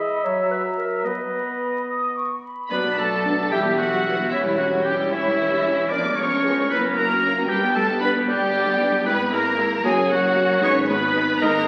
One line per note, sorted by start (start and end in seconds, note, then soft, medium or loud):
0.00 0.26 D#5 medium
0.00 1.07 E5 soft
0.00 0.25 B5 soft
0.24 1.05 F#3 soft
0.24 0.50 C#5 medium
0.24 1.06 A#5 soft
0.51 0.63 B4 soft
0.77 1.08 A#4 medium
1.05 2.43 B3 soft
1.05 1.89 B4 soft
1.05 2.43 D#5 soft
1.05 1.82 B5 soft
1.88 2.14 D#6 soft
2.15 2.43 C#6 soft
2.43 2.70 B5 soft
2.70 3.42 B1 medium
2.70 2.83 F#3 soft
2.70 2.78 B3 medium
2.70 2.83 D4 soft
2.70 2.78 B4 medium
2.70 2.96 B4 medium
2.70 3.47 D5 medium
2.70 2.95 B5 medium
2.84 2.98 B3 soft
2.84 2.98 F#4 soft
2.97 3.11 F#3 soft
2.97 3.50 A3 medium
2.97 3.11 D4 soft
2.97 3.50 A4 medium
2.97 3.53 A4 medium
2.97 3.52 A5 medium
3.11 3.25 B3 soft
3.11 3.25 F#4 soft
3.23 3.37 F#3 soft
3.23 3.34 B3 medium
3.23 3.37 D4 soft
3.23 3.33 D4 medium
3.37 3.51 B3 soft
3.37 3.51 F#4 soft
3.51 4.22 E1 medium
3.51 3.78 G3 medium
3.51 3.64 G3 soft
3.51 3.64 E4 soft
3.51 3.78 G4 medium
3.51 3.79 G4 medium
3.51 4.30 E5 medium
3.51 3.60 G5 medium
3.65 3.78 B3 soft
3.65 3.78 G4 soft
3.78 4.31 F#3 medium
3.78 3.92 G3 soft
3.78 3.92 E4 soft
3.78 4.31 F#4 medium
3.78 4.30 F#4 medium
3.78 4.30 F#5 medium
3.91 4.05 B3 soft
3.91 4.05 G4 soft
4.05 4.17 G3 soft
4.05 4.14 B3 soft
4.05 4.14 E4 soft
4.05 4.17 E4 soft
4.18 4.31 B3 soft
4.18 4.32 G4 soft
4.30 5.02 E1 medium
4.30 4.44 E3 soft
4.30 4.58 E3 soft
4.30 4.44 C#4 soft
4.30 4.58 E4 medium
4.30 4.43 E4 soft
4.30 5.10 C#5 medium
4.30 4.38 E5 medium
4.45 4.58 G3 soft
4.45 4.58 E4 soft
4.58 4.71 E3 soft
4.58 4.85 F#3 medium
4.58 4.72 C#4 soft
4.58 4.70 F#4 medium
4.58 4.85 F#4 medium
4.58 4.66 F#5 medium
4.71 4.85 G3 soft
4.71 4.85 E4 soft
4.84 4.97 E3 soft
4.84 5.12 G3 medium
4.84 4.94 C#4 medium
4.84 4.98 C#4 soft
4.84 5.11 G4 medium
4.84 4.94 G4 soft
4.84 4.97 G4 medium
4.84 5.11 G5 medium
4.98 5.11 G3 soft
4.98 5.11 E4 soft
5.11 5.82 E1 medium
5.11 5.25 E3 soft
5.11 5.91 E3 medium
5.11 5.25 C#4 soft
5.11 5.91 E4 medium
5.11 5.93 C#5 medium
5.11 5.90 E5 medium
5.25 5.38 G3 soft
5.25 5.38 E4 soft
5.38 5.51 E3 soft
5.38 5.51 C#4 soft
5.51 5.65 G3 soft
5.51 5.65 E4 soft
5.64 5.78 E3 soft
5.64 5.74 C#4 soft
5.64 5.78 C#4 soft
5.64 5.74 G4 soft
5.79 5.92 G3 soft
5.79 5.92 E4 soft
5.90 6.61 F1 medium
5.90 6.04 F3 soft
5.90 6.04 B3 soft
5.90 5.99 D4 medium
5.90 7.50 A#4 medium
5.90 6.17 D5 medium
5.90 5.99 D5 medium
5.90 6.17 D6 medium
6.05 6.18 G#3 soft
6.05 6.18 D4 soft
6.16 6.32 F3 soft
6.16 6.31 B3 soft
6.16 6.70 C#4 medium
6.16 6.69 C#5 medium
6.16 6.71 C#6 medium
6.31 6.44 G#3 soft
6.31 6.44 D4 soft
6.42 6.57 F3 soft
6.42 6.52 B3 medium
6.42 6.57 B3 soft
6.42 6.52 G#4 medium
6.58 6.71 G#3 soft
6.58 6.71 D4 soft
6.70 7.40 F#1 medium
6.70 6.83 A#3 medium
6.70 6.97 B3 medium
6.70 6.83 E4 soft
6.70 6.94 B4 medium
6.70 6.80 B4 medium
6.70 6.78 B5 medium
6.84 6.97 C#4 soft
6.84 6.97 F#4 soft
6.95 7.10 A#3 soft
6.95 7.50 A#3 medium
6.95 7.10 E4 soft
6.95 7.51 A#4 medium
6.95 7.49 A#4 medium
6.95 7.48 A#5 medium
7.10 7.23 C#4 soft
7.10 7.23 F#4 soft
7.22 7.36 A#3 soft
7.22 7.31 C#4 medium
7.22 7.31 E4 soft
7.22 7.36 E4 soft
7.36 7.49 C#4 soft
7.36 7.49 F#4 soft
7.49 8.18 G1 medium
7.49 7.61 G3 medium
7.49 7.75 G3 medium
7.49 7.61 D4 medium
7.49 7.75 G4 medium
7.49 7.57 G4 medium
7.49 8.30 B4 medium
7.49 7.75 G5 medium
7.62 7.75 B3 soft
7.62 7.75 G4 soft
7.75 7.89 G3 soft
7.75 8.02 A3 medium
7.75 7.89 D4 soft
7.75 7.87 A4 medium
7.75 8.02 A4 medium
7.75 8.01 A5 medium
7.89 8.02 B3 soft
7.89 8.02 G4 soft
7.99 8.14 G3 soft
7.99 8.09 B3 medium
7.99 8.10 B3 medium
7.99 8.09 D4 medium
7.99 8.14 D4 medium
7.99 8.28 B4 medium
7.99 8.10 B4 medium
7.99 8.09 B5 medium
8.16 8.28 B3 soft
8.16 8.28 G4 soft
8.27 8.96 G1 medium
8.27 9.04 G3 medium
8.27 8.41 G3 medium
8.27 8.41 D4 medium
8.27 9.05 G4 medium
8.27 9.06 D5 medium
8.27 9.04 G5 medium
8.41 8.54 B3 soft
8.41 8.54 G4 soft
8.54 8.66 G3 soft
8.54 8.66 D4 medium
8.66 8.80 B3 soft
8.66 8.80 G4 medium
8.78 8.93 G3 soft
8.78 8.88 B3 medium
8.78 8.88 D4 soft
8.78 8.93 D4 soft
8.92 9.06 B3 soft
8.92 9.06 G4 soft
9.05 9.75 G#1 medium
9.05 9.13 G#3 medium
9.05 9.81 G#3 medium
9.05 9.32 B3 medium
9.05 9.13 E4 medium
9.05 9.81 E4 medium
9.05 9.32 B4 medium
9.05 9.18 B4 medium
9.05 9.56 B4 medium
9.05 9.31 B5 medium
9.30 9.39 G#3 medium
9.30 9.83 A#3 medium
9.30 9.38 E4 medium
9.30 9.83 A#4 medium
9.30 9.66 A#4 medium
9.30 9.85 A#5 medium
9.57 9.65 G#3 medium
9.57 9.65 E4 medium
9.83 10.53 F#1 medium
9.83 9.92 G#3 medium
9.83 9.91 A#3 medium
9.83 10.63 A#3 medium
9.83 10.63 C#4 medium
9.83 9.91 F#4 medium
9.83 10.10 G#4 medium
9.83 10.09 G#4 medium
9.83 10.59 C#5 medium
9.83 10.11 G#5 medium
10.09 10.61 F#3 medium
10.09 10.17 A#3 medium
10.09 10.17 F#4 medium
10.09 10.62 F#4 medium
10.09 10.63 F#5 medium
10.35 10.43 A#3 medium
10.35 10.43 F#4 soft
10.62 11.32 G#1 medium
10.62 11.68 G#3 medium
10.62 10.70 G#3 medium
10.62 10.89 C#4 medium
10.62 11.68 D#4 medium
10.62 10.70 D#4 medium
10.62 11.40 B4 medium
10.62 10.89 C#5 medium
10.62 10.75 C#5 medium
10.62 10.70 C#6 loud
10.88 10.97 G#3 medium
10.88 11.40 B3 medium
10.88 10.96 D#4 medium
10.88 11.42 B4 medium
10.88 11.41 B4 medium
10.88 11.40 B5 medium
11.15 11.23 G#3 medium
11.15 11.23 D#4 medium
11.41 11.68 G#1 medium
11.41 11.50 G#3 medium
11.41 11.68 A#3 medium
11.41 11.50 D#4 medium
11.41 11.68 A#4 medium
11.41 11.54 A#4 medium
11.41 11.68 D#5 medium
11.41 11.67 A#5 loud